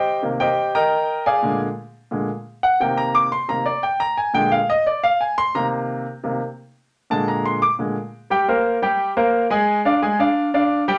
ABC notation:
X:1
M:4/4
L:1/8
Q:1/4=175
K:Cm
V:1 name="Grand piano"
[Gceg] z [Gceg]2 [Begb]3 [Adfa]- | [Adfa] z6 ^f | g b d' c' b d g b | a g f e d f a c' |
b z6 z | z =a b c' d' z3 | [G,Gg] [B,Bc]2 [G,Gg]2 [B,Bc]2 [A,Aa]- | [A,Aa] [Ddf] [A,Aa] [Ddf]2 [Ddf]2 [G,Gg] |]
V:2 name="Grand piano" clef=bass
z [C,E,B,] z6 | [B,,D,A,] z3 [B,,D,A,] z3 | [C,E,B,]3 z [C,E,B,] z3 | z [B,,D,A,] z6 |
[C,E,B,]3 z [C,E,B,] z3 | z [B,,D,A,]3 z [B,,D,A,] z2 | z8 | z8 |]